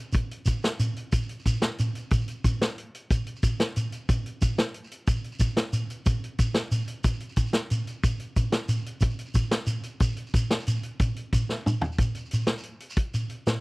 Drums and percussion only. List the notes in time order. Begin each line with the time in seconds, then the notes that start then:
0.13 kick, closed hi-hat, shekere
0.31 closed hi-hat
0.46 kick, closed hi-hat, shekere
0.62 snare, closed hi-hat, shekere
0.80 closed hi-hat, shekere
0.97 closed hi-hat
1.12 kick, closed hi-hat, shekere
1.22 shekere
1.29 closed hi-hat
1.39 shekere
1.46 kick, closed hi-hat, shekere
1.55 shekere
1.62 snare, closed hi-hat
1.78 closed hi-hat, shekere
1.95 closed hi-hat, shekere
2.10 kick, closed hi-hat, shekere
2.21 shekere
2.28 closed hi-hat, shekere
2.44 kick, closed hi-hat, shekere
2.61 snare, closed hi-hat, shekere
2.78 closed hi-hat
2.94 closed hi-hat
3.10 kick, closed hi-hat, shekere
3.26 closed hi-hat
3.36 shekere
3.43 kick, closed hi-hat, shekere
3.60 snare, closed hi-hat
3.76 closed hi-hat, shekere
3.92 closed hi-hat, shekere
4.09 kick, closed hi-hat, shekere
4.26 closed hi-hat
4.42 kick, closed hi-hat, shekere
4.57 snare, closed hi-hat, shekere
4.74 closed hi-hat
4.84 shekere
4.91 closed hi-hat
5.07 kick, closed hi-hat, shekere
5.16 shekere
5.24 closed hi-hat
5.32 shekere
5.39 kick, closed hi-hat, shekere
5.48 shekere
5.57 snare, closed hi-hat
5.73 closed hi-hat, shekere
5.90 closed hi-hat, shekere
6.06 kick, closed hi-hat, shekere
6.24 closed hi-hat
6.38 kick, closed hi-hat, shekere
6.54 snare, closed hi-hat, shekere
6.72 closed hi-hat, shekere
6.80 shekere
6.88 closed hi-hat
7.04 kick, closed hi-hat, shekere
7.13 shekere
7.20 closed hi-hat
7.29 shekere
7.36 kick, closed hi-hat, shekere
7.46 shekere
7.53 snare, closed hi-hat
7.70 closed hi-hat, shekere
7.87 closed hi-hat, shekere
8.04 kick, closed hi-hat, shekere
8.20 closed hi-hat
8.36 kick, closed hi-hat, shekere
8.52 snare, closed hi-hat, shekere
8.69 closed hi-hat, shekere
8.77 shekere
8.86 closed hi-hat
9.01 kick, closed hi-hat, shekere
9.10 shekere
9.19 closed hi-hat
9.26 shekere
9.34 kick, closed hi-hat, shekere
9.43 shekere
9.51 snare, closed hi-hat
9.67 closed hi-hat, shekere
9.83 closed hi-hat, shekere
10.00 kick, closed hi-hat, shekere
10.10 shekere
10.17 closed hi-hat
10.27 shekere
10.34 kick, closed hi-hat, shekere
10.50 snare, closed hi-hat
10.59 shekere
10.67 closed hi-hat, shekere
10.76 shekere
10.83 closed hi-hat
10.99 kick, closed hi-hat, shekere
11.16 closed hi-hat
11.33 kick, closed hi-hat, shekere
11.49 snare, shekere
11.66 mid tom, shekere
11.81 floor tom, shekere
11.92 shekere
11.98 kick, closed hi-hat, shekere
12.15 closed hi-hat, shekere
12.25 shekere
12.31 closed hi-hat, shekere
12.41 shekere
12.47 snare, closed hi-hat
12.58 shekere
12.63 closed hi-hat
12.80 closed hi-hat
12.90 shekere
12.96 kick, closed hi-hat
13.14 closed hi-hat, shekere
13.29 closed hi-hat
13.47 snare, closed hi-hat, shekere